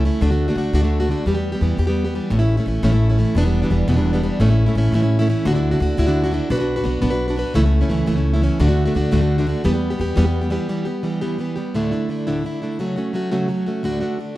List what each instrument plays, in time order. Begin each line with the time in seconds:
0.04 steel-string acoustic guitar E3 A3 C#4 E4
0.21 upright bass D2, steel-string acoustic guitar D2 A2 D3 A3 D4 F#4
0.31 steel-string acoustic guitar D3 A3 D4 F#4
0.48 steel-string acoustic guitar D3 A3 D4 F#4
0.55 upright bass D2, steel-string acoustic guitar D3 A3 D4 F#4
0.73 upright bass D2, steel-string acoustic guitar D2 A2 D3 A3 D4 F#4
0.82 steel-string acoustic guitar D3 A3 D4 F#4
1.00 steel-string acoustic guitar D3 A3 D4 F#4
1.09 steel-string acoustic guitar D3 A3 D4 F#4
1.26 upright bass E2, steel-string acoustic guitar E3 G3 B3 G4
1.35 steel-string acoustic guitar G3 B3 G4
1.52 steel-string acoustic guitar G3 B3 G4
1.61 upright bass E2, steel-string acoustic guitar E3 G3 B3 G4
1.77 upright bass E2, steel-string acoustic guitar E3 G3 B3 G4
1.87 steel-string acoustic guitar G3 B3 G4
2.04 steel-string acoustic guitar G3 B3 G4
2.14 steel-string acoustic guitar E3 G3 B3 G4
2.30 upright bass A1, steel-string acoustic guitar A2 E3 A3 C#4 E4
2.39 steel-string acoustic guitar A3 C#4 E4
2.57 steel-string acoustic guitar A3 C#4 E4
2.66 upright bass A1, steel-string acoustic guitar E3 A3 C#4 E4
2.83 upright bass A1, steel-string acoustic guitar A2 E3 A3 C#4 E4
2.92 steel-string acoustic guitar A3 C#4 E4
3.09 steel-string acoustic guitar A3 C#4 E4
3.18 steel-string acoustic guitar E3 A3 C#4 E4
3.35 upright bass E1, steel-string acoustic guitar E2 B2 E3 G3 B3 D4
3.45 steel-string acoustic guitar E3 G3 B3 D4
3.62 steel-string acoustic guitar E3 G3 B3 D4
3.70 upright bass E1, steel-string acoustic guitar E3 G3 B3 D4
3.87 upright bass E1, steel-string acoustic guitar E2 B2 E3 G3 B3 D4
3.96 steel-string acoustic guitar E3 G3 B3 D4
4.13 steel-string acoustic guitar E3 G3 B3 D4
4.22 steel-string acoustic guitar E3 G3 B3 D4
4.40 upright bass A1, steel-string acoustic guitar A2 E3 A3 C#4 E4
4.49 steel-string acoustic guitar A3 C#4 E4
4.66 steel-string acoustic guitar A3 C#4 E4
4.75 upright bass A1, steel-string acoustic guitar E3 A3 C#4 E4
4.92 upright bass A1, steel-string acoustic guitar A2 E3 A3 C#4 E4
5.02 steel-string acoustic guitar A3 C#4 E4
5.19 steel-string acoustic guitar A3 C#4 E4
5.28 steel-string acoustic guitar E3 A3 C#4 E4
5.45 steel-string acoustic guitar D2 A2 D3 D4 E4 F#4, upright bass D2
5.54 steel-string acoustic guitar D3 D4 E4 F#4
5.71 steel-string acoustic guitar D3 D4 E4 F#4
5.80 upright bass D2, steel-string acoustic guitar D3 D4 E4 F#4
5.97 steel-string acoustic guitar D2 A2 D3 D4 E4 F#4, upright bass D2
6.07 steel-string acoustic guitar D3 D4 E4 F#4
6.23 steel-string acoustic guitar D3 D4 E4 F#4
6.32 steel-string acoustic guitar D3 D4 E4 F#4
6.50 upright bass B1, steel-string acoustic guitar B3 D4 F#4 B4
6.59 steel-string acoustic guitar D4 F#4 B4
6.76 steel-string acoustic guitar D4 F#4 B4
6.84 upright bass B1, steel-string acoustic guitar B3 D4 F#4 B4
7.02 upright bass B1, steel-string acoustic guitar B3 D4 F#4 B4
7.10 steel-string acoustic guitar D4 F#4 B4
7.28 steel-string acoustic guitar D4 F#4 B4
7.36 steel-string acoustic guitar B3 D4 F#4 B4
7.54 upright bass C#2, steel-string acoustic guitar C#3 E3 A3 C#4 E4
7.63 steel-string acoustic guitar A3 C#4 E4
7.81 steel-string acoustic guitar A3 C#4 E4
7.89 upright bass C#2, steel-string acoustic guitar E3 A3 C#4 E4
8.06 upright bass C#2, steel-string acoustic guitar C#3 E3 A3 C#4 E4
8.15 steel-string acoustic guitar A3 C#4 E4
8.34 steel-string acoustic guitar A3 C#4 E4
8.41 steel-string acoustic guitar E3 A3 C#4 E4
8.59 steel-string acoustic guitar D2 A2 D3 A3 D4 F#4, upright bass D2
8.68 steel-string acoustic guitar D3 A3 D4 F#4
8.85 steel-string acoustic guitar D3 A3 D4 F#4
8.94 upright bass D2, steel-string acoustic guitar D3 A3 D4 F#4
9.11 steel-string acoustic guitar D2 A2 D3 A3 D4 F#4, upright bass D2
9.21 steel-string acoustic guitar D3 A3 D4 F#4
9.38 steel-string acoustic guitar D3 A3 D4 F#4
9.47 steel-string acoustic guitar D3 A3 D4 F#4
9.64 upright bass E2, steel-string acoustic guitar E3 G3 B3 G4
9.73 steel-string acoustic guitar G3 B3 G4
9.90 steel-string acoustic guitar G3 B3 G4
9.99 upright bass E2, steel-string acoustic guitar E3 G3 B3 G4
10.16 upright bass E2, steel-string acoustic guitar E3 G3 B3 G4
10.24 steel-string acoustic guitar G3 B3 G4
10.41 steel-string acoustic guitar G3 B3 G4
10.50 steel-string acoustic guitar E3 G3 B3 G4
10.69 steel-string acoustic guitar E3 G3 B3 G4
10.85 steel-string acoustic guitar G3 B3 G4
11.03 steel-string acoustic guitar E3 G3 B3 G4
11.21 steel-string acoustic guitar E3 G3 B3 G4
11.39 steel-string acoustic guitar E3 G3 B3 G4
11.56 steel-string acoustic guitar G3 B3 G4
11.74 steel-string acoustic guitar D2 A2 D3 A3 D4 E4
11.91 steel-string acoustic guitar D3 A3 D4 E4
12.09 steel-string acoustic guitar D3 A3 D4 E4
12.27 steel-string acoustic guitar D2 A2 D3 A3 D4 E4
12.44 steel-string acoustic guitar D3 A3 D4 E4
12.62 steel-string acoustic guitar D3 A3 D4 E4
12.79 steel-string acoustic guitar C#3 F#3 A3 C#4 F#4
12.96 steel-string acoustic guitar A3 C#4 F#4
13.13 steel-string acoustic guitar F#3 A3 C#4 F#4
13.31 steel-string acoustic guitar C#3 F#3 A3 C#4 F#4
13.48 steel-string acoustic guitar F#3 C#4 F#4
13.66 steel-string acoustic guitar A3 C#4 F#4
13.83 steel-string acoustic guitar D2 A2 D3 A3 D4 F#4
14.00 steel-string acoustic guitar D3 A3 D4 F#4
14.19 steel-string acoustic guitar D3 D4